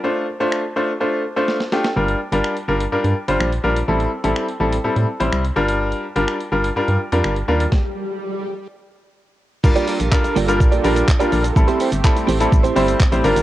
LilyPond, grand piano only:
\new Staff \with { instrumentName = "Grand piano" } { \time 4/4 \key g \dorian \tempo 4 = 125 <a d' f' c''>8 r16 <a d' f' c''>8 r16 <a d' f' c''>16 r16 <a d' f' c''>8 r16 <a d' f' c''>8 r16 <a d' f' g'>16 r16 | <g d' f' bes'>8 r16 <g d' f' bes'>8 r16 <g d' f' bes'>16 r16 <g d' f' bes'>8 r16 <g d' f' c''>8 r16 <g d' f' bes'>16 r16 | <g c' e' a'>8 r16 <g c' e' a'>8 r16 <g c' e' a'>16 r16 <g c' e' a'>8 r16 <g c' e' c''>8 r16 <g d' f' bes'>8~ | <g d' f' bes'>8 r16 <g d' f' bes'>8 r16 <g d' f' bes'>16 r16 <g d' f' bes'>8 r16 <g d' f' bes'>8 r16 <g d' f' bes'>16 r16 |
r1 | <g d' f' bes'>8 r8 <g d' f' bes'>8 r16 <g d' f' bes'>8 r16 <g d' f' bes'>8 r16 <g d' f' bes'>8 r16 | <g c' e' a'>8 r8 <g c' e' a'>8 r16 <g c' e' a'>8 r16 <g c' e' c''>8 r16 <g c' e' c''>16 <g d' f' bes'>8 | }